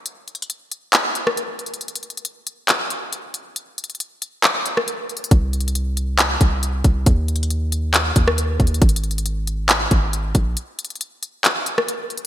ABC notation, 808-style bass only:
X:1
M:4/4
L:1/8
Q:1/4=137
K:Ablyd
V:1 name="808-style bass" clef=bass
z8 | z8 | z8 | C,,4- C,, C,,2 C,, |
E,,4- E,, E,,2 E,, | A,,,4- A,,, A,,,2 B,,, | z8 |]